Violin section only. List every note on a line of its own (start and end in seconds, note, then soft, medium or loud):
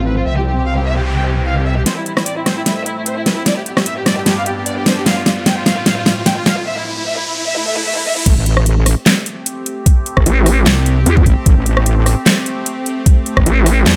0.06 0.14 B4 medium
0.17 0.24 F4 medium
0.26 0.34 E5 medium
0.37 0.44 G4 medium
0.46 0.54 G4 medium
0.57 0.64 G4 medium
0.66 0.74 F5 medium
0.77 0.84 G4 medium
0.86 0.94 E5 medium
0.97 1.04 G4 medium
1.06 1.14 G4 medium
1.17 1.24 G5 medium
1.26 1.34 G4 medium
1.37 1.44 G4 medium
1.46 1.54 F5 medium
1.57 1.64 G4 medium
1.66 1.74 E5 medium
1.77 1.84 G4 medium
1.86 1.94 C5 medium
1.97 2.04 E4 medium
2.06 2.14 E4 medium
2.17 2.24 E4 medium
2.26 2.34 D5 medium
2.37 2.44 E4 medium
2.46 2.54 C5 medium
2.57 2.64 E4 medium
2.66 2.74 E4 medium
2.77 2.84 E5 medium
2.86 2.94 E4 medium
2.97 3.04 E4 medium
3.06 3.14 C5 medium
3.17 3.24 E4 medium
3.26 3.34 B4 medium
3.37 3.44 E4 medium
3.46 3.54 D5 loud
3.57 3.64 G4 medium
3.66 3.74 G4 medium
3.77 3.84 G4 medium
3.86 3.94 E5 medium
3.97 4.04 G4 medium
4.06 4.14 D5 medium
4.17 4.24 G4 medium
4.26 4.34 G4 medium
4.37 4.44 F5 medium
4.46 4.54 G4 medium
4.57 4.64 G4 medium
4.66 4.74 D5 medium
4.77 4.84 G4 medium
4.86 4.94 C5 medium
4.97 5.04 G4 medium
5.06 5.14 F5 medium
5.17 5.24 F4 medium
5.26 5.34 F4 medium
5.37 5.44 F4 medium
5.46 5.54 G5 medium
5.57 5.64 F4 medium
5.66 5.74 F5 medium
5.77 5.84 F4 medium
5.86 5.94 F5 medium
5.97 6.04 F4 medium
6.06 6.14 F4 medium
6.17 6.24 F4 medium
6.26 6.34 G5 medium
6.37 6.44 F4 medium
6.46 6.54 F5 medium
6.57 6.64 F4 medium
6.66 6.74 E5 loud
6.77 6.84 E4 medium
6.86 6.94 E4 medium
6.97 7.04 E4 medium
7.06 7.14 E5 loud
7.17 7.24 E4 medium
7.26 7.34 E4 medium
7.37 7.44 E4 medium
7.46 7.54 E5 loud
7.57 7.64 E4 medium
7.66 7.74 E5 loud
7.77 7.84 E4 medium
7.86 7.94 E5 loud
7.97 8.04 E4 medium
8.06 8.14 E5 loud
8.17 8.24 E4 medium